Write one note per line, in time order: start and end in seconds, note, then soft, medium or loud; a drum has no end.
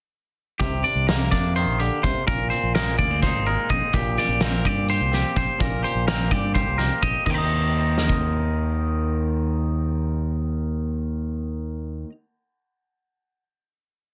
0.59 0.82 C2 medium
0.59 1.80 C3 medium
0.59 0.83 G4 medium
0.59 kick loud
0.59 closed hi-hat medium
0.84 1.31 D4 medium
0.84 1.07 D5 medium
0.84 closed hi-hat medium
0.95 1.29 C2 medium
1.07 2.54 A#3 medium
1.07 1.31 A#4 medium
1.07 snare medium
1.07 closed hi-hat medium
1.31 1.64 F2 medium
1.31 2.24 D4 soft
1.31 1.55 D5 medium
1.31 kick medium
1.31 snare soft
1.31 closed hi-hat medium
1.56 1.80 D#3 medium
1.56 1.79 C5 medium
1.56 closed hi-hat medium
1.66 1.89 A#1 medium
1.80 2.03 D3 medium
1.80 2.03 G4 medium
1.80 closed hi-hat medium
2.03 2.14 C2 medium
2.03 2.26 C3 medium
2.03 2.27 C5 medium
2.03 kick medium
2.03 closed hi-hat medium
2.27 2.49 A#1 medium
2.27 3.94 A#2 medium
2.27 2.50 A#4 medium
2.27 kick loud
2.27 closed hi-hat medium
2.50 2.98 C4 medium
2.50 2.74 C5 medium
2.50 closed hi-hat medium
2.63 2.96 A#1 medium
2.75 3.46 G#3 medium
2.75 2.98 A#4 medium
2.75 snare medium
2.75 closed hi-hat medium
2.99 3.32 D2 medium
2.99 3.11 A#3 soft
2.99 3.22 D5 medium
2.99 kick medium
2.99 closed hi-hat medium
3.11 3.70 C4 soft
3.22 4.19 D#4 medium
3.22 3.46 C5 medium
3.22 kick medium
3.22 snare soft
3.22 closed hi-hat medium
3.33 3.56 G#1 medium
3.46 3.94 G#3 medium
3.46 3.70 A#4 medium
3.46 closed hi-hat medium
3.69 3.81 A#1 medium
3.69 3.97 C4 medium
3.69 3.94 D#5 medium
3.69 kick medium
3.69 closed hi-hat soft
3.93 4.16 A#1 medium
3.93 5.58 A#2 medium
3.93 4.18 G4 medium
3.93 kick loud
3.93 closed hi-hat medium
4.17 4.65 G4 medium
4.17 4.41 D5 medium
4.17 snare soft
4.17 closed hi-hat medium
4.28 4.62 A#1 medium
4.40 5.11 C4 medium
4.40 4.66 A#4 medium
4.40 snare medium
4.40 closed hi-hat medium
4.65 4.99 G2 medium
4.65 4.89 G4 medium
4.65 4.89 D5 medium
4.65 kick medium
4.65 closed hi-hat medium
4.88 5.36 G4 medium
4.88 5.13 C5 medium
4.88 closed hi-hat medium
5.01 5.23 C2 medium
5.12 5.62 C4 medium
5.12 5.37 G4 medium
5.12 snare soft
5.12 closed hi-hat medium
5.36 5.48 A#1 medium
5.36 5.82 G4 medium
5.36 5.61 C5 medium
5.36 kick medium
5.36 closed hi-hat medium
5.59 5.83 A#1 loud
5.59 7.26 A#2 medium
5.59 5.84 A#4 medium
5.59 kick loud
5.59 closed hi-hat medium
5.83 6.30 G4 medium
5.83 6.07 C5 medium
5.83 closed hi-hat medium
5.95 6.29 A#1 medium
6.08 6.77 C4 soft
6.08 6.31 A#4 medium
6.08 snare medium
6.08 closed hi-hat medium
6.31 6.65 G2 medium
6.31 6.54 G4 medium
6.31 6.54 D5 medium
6.31 kick medium
6.31 closed hi-hat medium
6.54 7.02 G4 medium
6.54 6.79 C5 medium
6.54 kick medium
6.54 closed hi-hat medium
6.67 6.89 C2 medium
6.78 7.24 C4 medium
6.78 7.02 A#4 medium
6.78 snare soft
6.78 closed hi-hat medium
7.02 7.14 A#1 medium
7.02 7.24 G4 medium
7.02 7.25 D#5 medium
7.02 kick medium
7.02 closed hi-hat medium
7.26 12.03 D#2 medium
7.26 12.08 D#2 medium
7.26 12.09 D#3 medium
7.26 7.30 D#5 medium
7.26 7.34 G5 medium
7.26 kick medium
7.26 crash medium
7.31 12.10 C4 medium
7.31 8.04 G4 medium
7.31 12.12 A#5 medium
7.38 12.09 D#5 medium
7.98 12.08 A#4 medium
7.98 snare soft
8.04 12.11 D#5 medium
8.09 kick medium